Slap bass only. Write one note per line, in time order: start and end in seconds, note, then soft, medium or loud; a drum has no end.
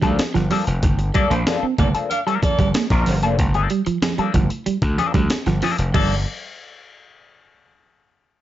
0.03 0.16 D2 medium
0.20 muted slap bass stroke medium
0.35 0.49 G1 medium
0.67 0.81 F1 medium
0.83 1.10 G1 medium
1.31 1.44 A#1 medium
1.63 muted slap bass stroke soft
1.78 1.92 G1 medium
2.43 muted slap bass stroke soft
2.59 2.72 G1 loud
2.91 3.04 A#1 medium
3.07 3.23 G1 loud
3.23 3.39 F1 medium
3.39 3.66 G1 loud
3.87 muted slap bass stroke soft
4.19 muted slap bass stroke soft
4.35 4.48 G1 medium
4.67 muted slap bass stroke soft
4.82 4.96 D2 medium
5.14 5.28 D2 medium
5.31 muted slap bass stroke soft
5.46 5.60 G1 medium
5.79 5.92 F1 medium
5.95 6.24 G1 medium